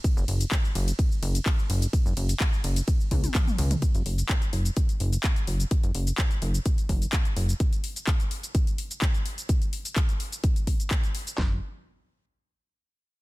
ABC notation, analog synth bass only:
X:1
M:4/4
L:1/16
Q:1/4=127
K:C#mix
V:1 name="Analog synth bass" clef=bass
z F,,, F,,, z3 F,,, z3 F,,, z3 F,,, z | z F,,, F,,, z3 F,,, z3 C,, z3 C,, z | z F,,, F,,, z3 F,,, z3 F,,, z3 F,,, z | z F,,, F,,, z3 F,,, z3 F,,, z3 F,,, z |
z16 | z16 | F,,,2 z12 z2 |]